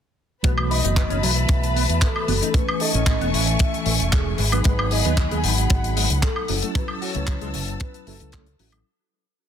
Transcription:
0.43 fingered electric bass B1, tine electric piano E3 A3 B3 F#4, clean electric guitar B3, string section B4 A5 B5, soft synth lead B4, kick, closed hi-hat
0.58 high woodblock
0.70 clean electric guitar B4, soft synth lead D#5, open hi-hat
0.83 fingered electric bass F#1, tine electric piano E3 A3 B3 F#4, clean electric guitar D#4, closed hi-hat
0.96 clean electric guitar B3, kick, clap, closed hi-hat
1.10 fingered electric bass F#1, clean electric guitar C#4, closed hi-hat
1.23 fingered electric bass B1, clean electric guitar F#3, soft synth lead E5, open hi-hat
1.36 closed hi-hat
1.49 fingered electric bass B1, kick, closed hi-hat
1.63 closed hi-hat
1.76 clean electric guitar B3, open hi-hat
1.89 fingered electric bass E2, closed hi-hat
2.01 clean electric guitar B3, soft synth lead A4, kick, clap, closed hi-hat
2.16 high woodblock
2.28 fingered electric bass F#1, tine electric piano E3 A3 B3 F#4, clean electric guitar B3, open hi-hat
2.41 tine electric piano E3 A3 C#4 G#4, clean electric guitar D#4, closed hi-hat
2.54 clean electric guitar A3, string section A3 G#5 C#6, soft synth lead B4, kick, closed hi-hat
2.69 high woodblock
2.80 clean electric guitar A4, soft synth lead D#5, open hi-hat
2.93 fingered electric bass A1, tine electric piano E3 A3 C#4 A4, clean electric guitar C#4, closed hi-hat
3.06 clean electric guitar A3, kick, clap, closed hi-hat
3.21 fingered electric bass E1, clean electric guitar B3, closed hi-hat
3.33 fingered electric bass A1, clean electric guitar E3, soft synth lead E5, open hi-hat
3.47 closed hi-hat
3.59 kick, closed hi-hat
3.74 closed hi-hat
3.86 fingered electric bass A1, clean electric guitar A3, open hi-hat
3.99 fingered electric bass E1, closed hi-hat
4.12 clean electric guitar A3, soft synth lead G#4, kick, clap, closed hi-hat
4.38 fingered electric bass G#1, clean electric guitar G#3, string section G#4 F#5 B5, open hi-hat
4.52 tine electric piano F#3 B3 D#4 G#4, clean electric guitar B3, closed hi-hat, high woodblock
4.64 fingered electric bass G#1, clean electric guitar G#3, soft synth lead B4, kick, closed hi-hat
4.79 high woodblock
4.91 clean electric guitar G#4, soft synth lead D#5, open hi-hat
5.05 fingered electric bass D#2, tine electric piano F#3 B3 D#4 G#4, clean electric guitar B3, closed hi-hat
5.17 clean electric guitar G#3, kick, clap, closed hi-hat
5.31 fingered electric bass D#2, clean electric guitar G#3, closed hi-hat
5.37 soft synth lead G#5
5.44 fingered electric bass G#1, clean electric guitar D#3, soft synth lead F#5, open hi-hat
5.58 closed hi-hat
5.70 fingered electric bass G#1, kick, closed hi-hat
5.84 closed hi-hat
5.96 clean electric guitar G#3, open hi-hat
6.10 fingered electric bass C#2, closed hi-hat
6.22 clean electric guitar G#3, soft synth lead A4, kick, clap, closed hi-hat
6.36 high woodblock
6.48 fingered electric bass F#1, clean electric guitar F#3, tine electric piano F#3 C#4 E4 A4, string section A5 E6, open hi-hat
6.62 tine electric piano F#3 C#4 E4 A4, clean electric guitar A3, closed hi-hat
6.75 clean electric guitar F#3, soft synth lead B4, kick, closed hi-hat
6.88 high woodblock
7.01 clean electric guitar F#4, soft synth lead C#5, open hi-hat
7.15 fingered electric bass C#2, tine electric piano F#3 C#4 E4 B4, clean electric guitar A3, closed hi-hat
7.27 clean electric guitar F#3, kick, clap, closed hi-hat
7.41 fingered electric bass C#2, clean electric guitar G#3, closed hi-hat
7.54 fingered electric bass F#1, clean electric guitar C#3, open hi-hat
7.68 closed hi-hat
7.80 soft synth lead B4, kick, closed hi-hat
7.94 closed hi-hat
8.07 fingered electric bass F#1, tine electric piano F#3 C#4 E4 B4, clean electric guitar F#3, soft synth lead A4, open hi-hat
8.20 fingered electric bass C#2, tine electric piano F#3 C#4 E4 B4, closed hi-hat
8.32 clean electric guitar A3, kick, clap, closed hi-hat
8.46 closed hi-hat
8.59 fingered electric bass A1, tine electric piano F#3 C#4 E4 A4, clean electric guitar F#3, open hi-hat
8.72 clean electric guitar G#3, closed hi-hat, high woodblock

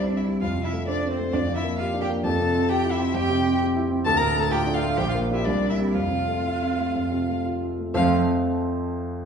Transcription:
Already playing: grand piano C2 G2 G3 C4 C5, cello D4
0.10 grand piano C4
0.17 cello E4, violin E5
0.26 grand piano G3
0.41 grand piano F2, cello F4, violin F5
0.58 grand piano C3
0.64 cello E4, violin E5
0.73 grand piano A3
0.87 cello D4, grand piano C5, violin D5
1.03 grand piano C4
1.10 cello C4, violin C5
1.18 grand piano A3
1.33 grand piano F2, cello D4, violin D5
1.48 grand piano F3
1.56 cello E4, violin E5
1.63 grand piano A#3
1.78 cello F4, grand piano G4, violin F5
1.94 grand piano D4
2.01 cello G4, violin G5
2.09 grand piano A#3
2.24 grand piano F2, cello A4, violin A5
2.39 grand piano C3
2.55 grand piano C4
2.69 grand piano G4, cello G4, violin G5
2.84 grand piano E4
2.91 cello E4, violin E5
2.99 grand piano C4
3.14 grand piano F2, cello G4, violin G5
3.30 grand piano C3
3.46 grand piano C4
3.61 grand piano G4
3.76 grand piano E4
3.91 grand piano C4
4.05 grand piano D2, cello A4, violin A5
4.17 cello A#4, violin A#5
4.21 grand piano A2
4.36 grand piano A3, cello A4, violin A5
4.51 grand piano F4, cello G4, violin G5
4.67 grand piano D4
4.74 cello F4, violin F5
4.82 grand piano A3
4.97 grand piano A#1, cello G4, violin G5
5.09 cello F4, violin F5
5.14 grand piano A#3
5.30 grand piano D4 G4, cello E4, violin E5
5.45 grand piano C2, cello D4, violin D5
5.62 grand piano A#3
5.70 cello E4, violin E5
5.78 grand piano C4 G4
5.94 grand piano F2, cello F4, violin F5
6.11 grand piano C3
6.28 grand piano A3
6.45 grand piano F4
6.62 grand piano C4
6.79 grand piano A3
6.95 grand piano F2
7.12 grand piano C3
7.29 grand piano A3
7.45 grand piano F4
7.62 grand piano C4
7.79 grand piano A3
7.94 grand piano F2 F3 A3 C4 F4 C5, cello F3, violin F5

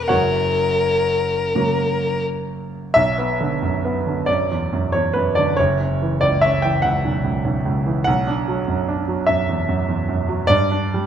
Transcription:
Already playing: grand piano E1 E2 E3 B3 G4 E5 G5
0.08 grand piano F#1 F#2 F#4 C#5 F#5, violin A#4
1.55 grand piano C#3 F#3 A#3
2.94 grand piano B1 E5
3.18 grand piano B3
3.40 grand piano D3
3.62 grand piano F#2
3.85 grand piano B3
4.07 grand piano D3
4.26 grand piano F#2 D5
4.51 grand piano E2
4.73 grand piano F#2
4.92 grand piano E2 C#5
5.13 grand piano F#2 B4
5.35 grand piano D3 D5
5.57 grand piano F#1 C#5
5.81 grand piano C#4
6.02 grand piano E3
6.21 grand piano C#2 D5
6.41 grand piano C#4 E5
6.62 grand piano E3 G5
6.82 grand piano C#2 F#5
7.04 grand piano B1
7.24 grand piano C#2
7.44 grand piano B1
7.65 grand piano C#2
7.86 grand piano E3
8.04 grand piano B1 F#5
8.27 grand piano D4
8.48 grand piano F#3
8.68 grand piano F#2
8.88 grand piano D4
9.08 grand piano F#3
9.26 grand piano F#2 E5
9.49 grand piano E2
9.69 grand piano F#2
9.88 grand piano E2
10.09 grand piano F#2
10.29 grand piano F#3
10.47 grand piano G2 D5
10.71 grand piano D4
10.94 grand piano G3

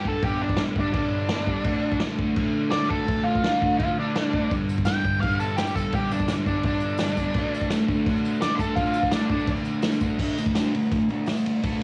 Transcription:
0.05 distorted electric guitar G2 D3 G3, lead electric guitar A4, kick
0.23 distorted electric guitar G2 D3 G3, lead electric guitar G4, kick, crash
0.42 lead electric guitar D4
0.49 kick
0.57 distorted electric guitar G2 D3 G3, snare, crash
0.76 distorted electric guitar G2 D3 G3, lead electric guitar D4, kick
0.94 distorted electric guitar G2 D3 G3, lead electric guitar D4, kick, crash
1.29 distorted electric guitar G2 D3 G3, snare, crash
1.47 distorted electric guitar G2 D3 G3, kick
1.64 distorted electric guitar D3 A3 D4, kick, crash
1.92 kick
2.00 distorted electric guitar D3 A3 D4, snare, crash
2.19 distorted electric guitar D3 A3 D4, kick
2.36 distorted electric guitar D3 A3 D4, kick, crash
2.71 distorted electric guitar D3 A3 D4, lead electric guitar D5, snare, crash
2.89 distorted electric guitar D3 A3 D4, lead electric guitar A4, kick
3.07 distorted electric guitar D3 A3 D4, kick, crash
3.24 lead electric guitar F4
3.35 kick
3.43 distorted electric guitar D3 A3 D4, snare, crash
3.60 distorted electric guitar D3 A3 D4, kick
3.78 distorted electric guitar D3 A3 D4, lead electric guitar F4, kick, crash
3.99 lead electric guitar D4
4.16 distorted electric guitar D3 A3 D4, snare, crash
4.33 distorted electric guitar D3 A3 D4, kick
4.51 distorted electric guitar G2 D3 G3, kick, tambourine, crash
4.69 tambourine
4.77 kick, tambourine
4.85 distorted electric guitar G2 D3, lead electric guitar G5, snare, tambourine, crash
4.90 distorted electric guitar G3
5.03 distorted electric guitar G2 D3 G3, kick, tambourine
5.21 distorted electric guitar G2 D3 G3, lead electric guitar F5, kick, tambourine, crash
5.31 tambourine
5.40 lead electric guitar A4, tambourine
5.49 tambourine
5.57 distorted electric guitar G2 D3, lead electric guitar G4, snare, tambourine, crash
5.62 distorted electric guitar G3
5.67 tambourine
5.75 distorted electric guitar G2 D3 G3, lead electric guitar A4, kick, tambourine
5.92 distorted electric guitar G2 D3 G3, lead electric guitar G4, kick, tambourine, crash
6.11 lead electric guitar D4, tambourine
6.20 kick, tambourine
6.28 distorted electric guitar G2 D3 G3, snare, tambourine, crash
6.39 tambourine
6.46 distorted electric guitar G2 D3 G3, lead electric guitar D4, kick, tambourine
6.63 distorted electric guitar G2 D3 G3, lead electric guitar D4, kick, tambourine, crash
6.73 tambourine
6.80 tambourine
6.90 tambourine
6.98 snare, tambourine, crash
7.02 distorted electric guitar G2 D3 G3
7.08 tambourine
7.17 distorted electric guitar G2, kick, tambourine
7.22 distorted electric guitar D3 G3
7.34 distorted electric guitar D3 A3, kick, tambourine, crash
7.39 distorted electric guitar D4
7.54 tambourine
7.61 kick
7.70 distorted electric guitar D3 A3 D4, snare, tambourine, crash
7.88 distorted electric guitar D3 A3 D4, kick, tambourine
8.06 distorted electric guitar D3 A3 D4, kick, tambourine, crash
8.16 tambourine
8.25 tambourine
8.35 tambourine
8.41 distorted electric guitar D3 A3 D4, lead electric guitar D5, snare, tambourine, crash
8.55 lead electric guitar A4, kick
8.59 distorted electric guitar D3 A3 D4, tambourine
8.75 lead electric guitar F4, kick, tambourine, crash
8.80 distorted electric guitar D3 A3 D4
8.86 tambourine
8.94 tambourine
9.03 kick, tambourine
9.11 distorted electric guitar D3, lead electric guitar D4, snare, tambourine, crash
9.15 distorted electric guitar A3 D4
9.23 tambourine
9.30 distorted electric guitar D3 A3, lead electric guitar D4, kick, tambourine
9.35 distorted electric guitar D4
9.39 tambourine
9.47 distorted electric guitar D3 A3, kick, tambourine, crash
9.51 distorted electric guitar D4
9.56 tambourine
9.65 tambourine
9.74 tambourine
9.82 distorted electric guitar D3 A3, snare, tambourine, crash
9.87 distorted electric guitar D4
9.92 tambourine
10.00 distorted electric guitar D3 A3 D4, kick, tambourine
10.10 tambourine
10.19 distorted electric guitar D3 A3 D4, kick, crash
10.29 tambourine
10.38 distorted electric guitar D3 A3, ride, tambourine
10.46 kick
10.55 distorted electric guitar D3 A3 D4, snare, ride, tambourine
10.65 tambourine
10.74 distorted electric guitar D3 A3, ride
10.82 tambourine
10.92 distorted electric guitar D3 A3, kick, ride
11.00 tambourine
11.09 distorted electric guitar D3 A3 D4, ride, tambourine
11.17 tambourine
11.26 distorted electric guitar D3 A3, snare, ride, tambourine
11.37 tambourine
11.46 distorted electric guitar D3 A3, ride
11.63 distorted electric guitar D3 A3 D4, kick, ride
11.73 tambourine

